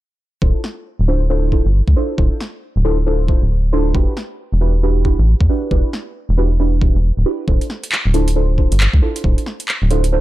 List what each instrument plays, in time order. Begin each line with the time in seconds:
0.42 analog synth bass D1, synth stab D4 E4 F4 A4 C5, kick
0.64 snare
0.99 analog synth bass D1
1.08 synth stab D4 E4 F4 A4 C5
1.30 synth stab D4 E4 F4 A4 C5
1.52 synth stab D4 E4 F4 A4 C5, kick
1.66 analog synth bass G1
1.88 analog synth bass D2, kick
1.96 synth stab D4 E4 F4 A4 C5
2.18 analog synth bass D1, synth stab D4 E4 F4 A4 C5, kick
2.40 snare
2.76 analog synth bass D1
2.84 synth stab D4 E4 F4 A4 C5
3.06 synth stab D4 E4 F4 A4 C5
3.28 synth stab D4 E4 F4 A4 C5, kick
3.42 analog synth bass D1
3.73 synth stab D4 E4 F4 A4 C5
3.95 analog synth bass E1, synth stab D4 E4 F#4 G4 B4, kick
4.17 snare
4.52 analog synth bass E1
4.61 synth stab D4 E4 F#4 G4 B4
4.83 synth stab D4 E4 F#4 G4 B4
5.05 synth stab D4 E4 F#4 G4 B4, kick
5.19 analog synth bass A1
5.41 analog synth bass E2, kick
5.49 synth stab D4 E4 F#4 G4 B4
5.71 analog synth bass E1, synth stab D4 E4 F#4 G4 B4, kick
5.93 snare
6.29 analog synth bass E1
6.37 synth stab D4 E4 F#4 G4 B4
6.60 synth stab D4 E4 F#4 G4 B4
6.82 analog synth bass D1, synth stab D4 E4 F#4 G4 B4, kick
6.95 analog synth bass E1
7.17 analog synth bass D1
7.26 synth stab D4 E4 F#4 G4 B4
7.48 analog synth bass D1, synth stab D4 E4 F4 A4 C5, kick
7.61 closed hi-hat
7.70 snare
7.84 closed hi-hat
7.92 clap
8.05 analog synth bass D1
8.14 synth stab D4 E4 F4 A4 C5, closed hi-hat
8.28 closed hi-hat
8.36 synth stab D4 E4 F4 A4 C5
8.58 synth stab D4 E4 F4 A4 C5, kick
8.72 analog synth bass G1, closed hi-hat
8.80 clap
8.94 analog synth bass D2, kick
9.02 synth stab D4 E4 F4 A4 C5
9.16 closed hi-hat
9.24 analog synth bass D1, synth stab D4 E4 F4 A4 C5, kick
9.38 closed hi-hat
9.46 snare
9.60 closed hi-hat
9.68 clap
9.82 analog synth bass D1
9.90 synth stab D4 E4 F4 A4 C5, closed hi-hat
10.04 closed hi-hat
10.12 synth stab D4 E4 F4 A4 C5